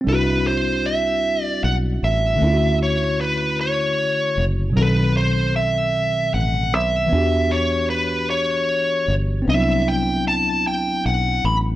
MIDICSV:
0, 0, Header, 1, 4, 480
1, 0, Start_track
1, 0, Tempo, 784314
1, 32, Time_signature, 6, 3, 24, 8
1, 7195, End_track
2, 0, Start_track
2, 0, Title_t, "Lead electric guitar"
2, 0, Program_c, 0, 29
2, 52, Note_on_c, 0, 71, 80
2, 287, Note_off_c, 0, 71, 0
2, 289, Note_on_c, 0, 72, 77
2, 524, Note_on_c, 0, 76, 89
2, 527, Note_off_c, 0, 72, 0
2, 879, Note_off_c, 0, 76, 0
2, 879, Note_on_c, 0, 74, 89
2, 1003, Note_off_c, 0, 74, 0
2, 1005, Note_on_c, 0, 78, 91
2, 1068, Note_off_c, 0, 78, 0
2, 1250, Note_on_c, 0, 76, 89
2, 1696, Note_off_c, 0, 76, 0
2, 1730, Note_on_c, 0, 73, 78
2, 1962, Note_off_c, 0, 73, 0
2, 1964, Note_on_c, 0, 71, 82
2, 2205, Note_off_c, 0, 71, 0
2, 2207, Note_on_c, 0, 73, 82
2, 2715, Note_off_c, 0, 73, 0
2, 2918, Note_on_c, 0, 71, 89
2, 3161, Note_off_c, 0, 71, 0
2, 3164, Note_on_c, 0, 72, 78
2, 3381, Note_off_c, 0, 72, 0
2, 3403, Note_on_c, 0, 76, 98
2, 3878, Note_off_c, 0, 76, 0
2, 3881, Note_on_c, 0, 78, 101
2, 4123, Note_off_c, 0, 78, 0
2, 4131, Note_on_c, 0, 76, 95
2, 4600, Note_on_c, 0, 73, 85
2, 4616, Note_off_c, 0, 76, 0
2, 4819, Note_off_c, 0, 73, 0
2, 4835, Note_on_c, 0, 71, 88
2, 5078, Note_off_c, 0, 71, 0
2, 5081, Note_on_c, 0, 73, 88
2, 5592, Note_off_c, 0, 73, 0
2, 5811, Note_on_c, 0, 76, 93
2, 6047, Note_on_c, 0, 79, 89
2, 6048, Note_off_c, 0, 76, 0
2, 6263, Note_off_c, 0, 79, 0
2, 6291, Note_on_c, 0, 81, 102
2, 6528, Note_off_c, 0, 81, 0
2, 6532, Note_on_c, 0, 79, 97
2, 6746, Note_off_c, 0, 79, 0
2, 6769, Note_on_c, 0, 78, 99
2, 7007, Note_off_c, 0, 78, 0
2, 7008, Note_on_c, 0, 83, 92
2, 7070, Note_off_c, 0, 83, 0
2, 7195, End_track
3, 0, Start_track
3, 0, Title_t, "Tine electric piano"
3, 0, Program_c, 1, 4
3, 6, Note_on_c, 1, 60, 63
3, 25, Note_on_c, 1, 55, 61
3, 41, Note_on_c, 1, 62, 58
3, 59, Note_on_c, 1, 64, 58
3, 75, Note_on_c, 1, 66, 71
3, 141, Control_c, 1, 64, 127
3, 1434, Note_off_c, 1, 60, 0
3, 1441, Note_on_c, 1, 50, 62
3, 1444, Note_off_c, 1, 55, 0
3, 1452, Note_off_c, 1, 62, 0
3, 1459, Note_on_c, 1, 57, 56
3, 1461, Note_off_c, 1, 64, 0
3, 1469, Note_off_c, 1, 66, 0
3, 1475, Note_on_c, 1, 61, 58
3, 1479, Control_c, 1, 64, 0
3, 1494, Note_on_c, 1, 64, 58
3, 1509, Note_on_c, 1, 65, 61
3, 1530, Note_off_c, 1, 65, 0
3, 1550, Note_on_c, 1, 66, 71
3, 1578, Control_c, 1, 64, 127
3, 2872, Note_off_c, 1, 50, 0
3, 2876, Note_on_c, 1, 47, 66
3, 2881, Note_off_c, 1, 57, 0
3, 2889, Note_off_c, 1, 61, 0
3, 2895, Note_on_c, 1, 54, 64
3, 2898, Note_off_c, 1, 64, 0
3, 2913, Note_on_c, 1, 60, 63
3, 2920, Control_c, 1, 64, 0
3, 2927, Note_off_c, 1, 66, 0
3, 2931, Note_on_c, 1, 51, 63
3, 2947, Note_on_c, 1, 69, 71
3, 3017, Control_c, 1, 64, 127
3, 4309, Note_off_c, 1, 47, 0
3, 4319, Note_off_c, 1, 54, 0
3, 4324, Note_on_c, 1, 52, 64
3, 4328, Note_off_c, 1, 60, 0
3, 4337, Note_off_c, 1, 51, 0
3, 4341, Note_on_c, 1, 59, 62
3, 4345, Note_off_c, 1, 69, 0
3, 4360, Control_c, 1, 64, 0
3, 4361, Note_on_c, 1, 62, 62
3, 4376, Note_on_c, 1, 66, 59
3, 4394, Note_on_c, 1, 67, 74
3, 4459, Control_c, 1, 64, 127
3, 5753, Note_off_c, 1, 52, 0
3, 5762, Note_off_c, 1, 59, 0
3, 5765, Note_on_c, 1, 60, 67
3, 5772, Note_off_c, 1, 62, 0
3, 5779, Note_off_c, 1, 66, 0
3, 5783, Note_on_c, 1, 59, 58
3, 5788, Note_off_c, 1, 67, 0
3, 5798, Note_on_c, 1, 62, 61
3, 5799, Control_c, 1, 64, 0
3, 5819, Note_on_c, 1, 63, 49
3, 5836, Note_on_c, 1, 54, 77
3, 5845, Note_off_c, 1, 63, 0
3, 5856, Note_on_c, 1, 64, 63
3, 5912, Control_c, 1, 64, 127
3, 7194, Note_off_c, 1, 60, 0
3, 7195, Note_off_c, 1, 54, 0
3, 7195, Note_off_c, 1, 59, 0
3, 7195, Note_off_c, 1, 62, 0
3, 7195, Note_off_c, 1, 64, 0
3, 7195, End_track
4, 0, Start_track
4, 0, Title_t, "Fingered electric bass"
4, 0, Program_c, 2, 33
4, 43, Note_on_c, 2, 36, 88
4, 973, Note_off_c, 2, 36, 0
4, 1002, Note_on_c, 2, 35, 83
4, 1213, Note_off_c, 2, 35, 0
4, 1241, Note_on_c, 2, 33, 93
4, 1453, Note_off_c, 2, 33, 0
4, 1480, Note_on_c, 2, 38, 97
4, 2439, Note_off_c, 2, 38, 0
4, 2439, Note_on_c, 2, 35, 86
4, 2678, Note_on_c, 2, 30, 96
4, 2687, Note_off_c, 2, 35, 0
4, 2891, Note_off_c, 2, 30, 0
4, 2920, Note_on_c, 2, 35, 96
4, 3851, Note_off_c, 2, 35, 0
4, 3881, Note_on_c, 2, 33, 77
4, 4120, Note_off_c, 2, 33, 0
4, 4120, Note_on_c, 2, 35, 95
4, 4332, Note_off_c, 2, 35, 0
4, 4362, Note_on_c, 2, 40, 98
4, 5322, Note_off_c, 2, 40, 0
4, 5322, Note_on_c, 2, 37, 84
4, 5533, Note_off_c, 2, 37, 0
4, 5558, Note_on_c, 2, 31, 90
4, 5771, Note_off_c, 2, 31, 0
4, 5799, Note_on_c, 2, 36, 94
4, 6731, Note_off_c, 2, 36, 0
4, 6765, Note_on_c, 2, 35, 82
4, 6975, Note_off_c, 2, 35, 0
4, 7003, Note_on_c, 2, 33, 93
4, 7195, Note_off_c, 2, 33, 0
4, 7195, End_track
0, 0, End_of_file